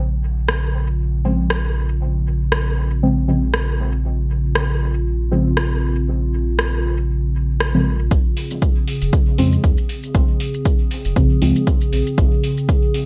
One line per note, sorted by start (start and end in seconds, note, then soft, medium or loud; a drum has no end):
0.00 8.09 A#1 medium
0.00 8.07 C#3 medium
0.00 8.07 C4 medium
0.00 8.10 F4 medium
0.49 cross-stick medium
1.25 1.44 C#3 medium
1.25 1.44 F3 medium
1.25 1.44 G#3 medium
1.25 1.44 C4 medium
1.50 cross-stick medium
2.52 cross-stick medium
3.03 3.22 C#3 medium
3.03 3.22 F3 medium
3.03 3.22 G#3 medium
3.03 3.22 C4 medium
3.28 3.48 C#3 medium
3.28 3.48 F3 medium
3.28 3.48 G#3 medium
3.28 3.48 C4 loud
3.54 cross-stick medium
4.55 cross-stick medium
5.31 5.51 C#3 medium
5.31 5.51 F3 medium
5.31 5.51 G#3 medium
5.31 5.51 C4 medium
5.57 cross-stick medium
6.59 cross-stick medium
7.60 cross-stick medium
7.74 8.10 C#3 medium
7.74 8.10 F3 medium
7.74 8.10 G#3 medium
7.74 8.10 C4 loud
8.11 8.21 A#1 loud
8.11 13.06 C#3 medium
8.11 13.06 C4 medium
8.11 13.06 G#4 medium
8.11 kick loud
8.11 shaker medium
8.37 open hi-hat medium
8.51 shaker soft
8.62 kick loud
8.62 shaker medium
8.88 open hi-hat medium
8.88 shaker soft
9.02 9.10 F1 loud
9.02 open hi-hat soft
9.02 shaker soft
9.13 kick loud
9.13 shaker soft
9.38 9.57 F2 medium
9.38 9.58 C#3 medium
9.38 9.58 F3 medium
9.38 9.58 G#3 medium
9.38 9.58 C4 medium
9.38 open hi-hat medium
9.38 shaker soft
9.53 shaker soft
9.64 9.74 D#2 medium
9.64 kick loud
9.64 shaker medium
9.78 shaker soft
9.89 open hi-hat medium
10.03 shaker soft
10.15 10.25 A#1 loud
10.15 kick loud
10.15 shaker medium
10.40 open hi-hat medium
10.54 shaker soft
10.65 kick loud
10.65 shaker medium
10.91 open hi-hat medium
10.91 shaker soft
11.05 11.13 F1 loud
11.05 open hi-hat soft
11.05 shaker soft
11.16 11.26 G#1 medium
11.16 11.36 C#3 medium
11.16 11.36 F3 medium
11.16 11.36 G#3 medium
11.16 11.36 C4 medium
11.16 kick loud
11.16 shaker soft
11.42 11.52 C#2 medium
11.42 11.61 C#3 medium
11.42 11.61 F3 medium
11.42 11.61 G#3 medium
11.42 11.61 C4 loud
11.42 open hi-hat medium
11.42 shaker soft
11.56 shaker soft
11.67 kick loud
11.67 shaker medium
11.81 shaker soft
11.93 12.03 A#1 medium
11.93 open hi-hat medium
12.07 shaker soft
12.18 12.28 A#1 loud
12.18 kick loud
12.18 shaker soft
12.44 open hi-hat medium
12.58 shaker soft
12.69 kick loud
12.69 shaker medium
12.94 open hi-hat medium
12.94 shaker soft